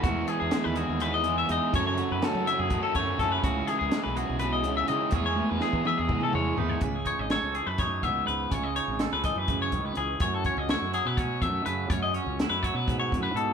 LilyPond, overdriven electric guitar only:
\new Staff \with { instrumentName = "Overdriven electric guitar" } { \time 7/8 \key cis \minor \tempo 4 = 124 <e gis b e' gis'>8 <b e' gis'>8 <e gis b e' gis'>8 <b e' gis'>8 <gis b e' gis'>8 <e gis b e' gis'>8 <gis b e' gis'>8 | <fis, cis fis a cis' a'>8 <fis a cis' a'>8 <fis, cis fis a cis' a'>8 <fis a cis' a'>8 <fis a cis' a'>8 <fis, cis fis a cis' a'>8 <fis a cis' a'>8 | <cis gis cis' e' gis'>8 <cis' e' gis'>8 <cis gis cis' e' gis'>8 <cis' e' gis'>8 <gis cis' e' gis'>8 <cis gis cis' e' gis'>8 <gis cis' e' gis'>8 | <e gis b e' gis'>8 <b e' gis'>8 <e gis b e' gis'>8 <b e' gis'>8 <gis b e' gis'>8 <e gis b e' gis'>8 <gis b e' gis'>8 |
r2. r8 | r2. r8 | r2. r8 | r2. r8 | }